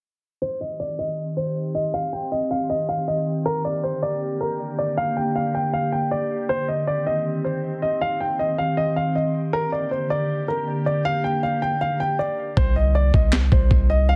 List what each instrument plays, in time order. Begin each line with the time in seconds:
0.42 ambient pad D#3 C4 G4, grand piano C5
0.61 grand piano D#5
0.80 grand piano D5
0.99 grand piano D#5
1.37 grand piano C5
1.75 grand piano D#5
1.94 grand piano F5
2.13 grand piano G5
2.32 grand piano D#5
2.51 grand piano F5
2.70 grand piano D#5
2.89 grand piano F5
3.08 grand piano D#5
3.46 ambient pad D3 A#3, grand piano A#4
3.65 grand piano D5
3.83 grand piano C5
4.03 grand piano D5
4.41 grand piano A#4
4.79 grand piano D5
4.97 grand piano F5
5.17 grand piano G5
5.35 grand piano F5
5.55 grand piano G5
5.73 grand piano F5
5.92 grand piano G5
6.11 grand piano D5
6.49 ambient pad D#3 C4, grand piano C5
6.68 grand piano D#5
6.87 grand piano D5
7.06 grand piano D#5
7.44 grand piano C5
7.82 grand piano D#5
8.01 grand piano F5
8.20 grand piano G5
8.39 grand piano D#5
8.58 grand piano F5
8.77 grand piano D#5
8.96 grand piano F5
9.15 grand piano D#5
9.53 ambient pad D3 A#3 G4, grand piano A#4
9.72 grand piano D5
9.91 grand piano C5
10.10 grand piano D5
10.48 grand piano A#4
10.86 grand piano D5
11.05 grand piano F5
11.24 grand piano G5
11.43 grand piano F5
11.62 grand piano G5
11.81 grand piano F5
12.00 grand piano G5
12.19 grand piano D5
12.57 808-style bass C2, grand piano C5, kick
12.76 grand piano D#5
12.95 grand piano D5
13.14 808-style bass C2, grand piano D#5, kick
13.33 snare, clap
13.52 808-style bass C2, grand piano C5, kick
13.71 808-style bass C2, kick
13.90 grand piano D#5
14.09 grand piano F5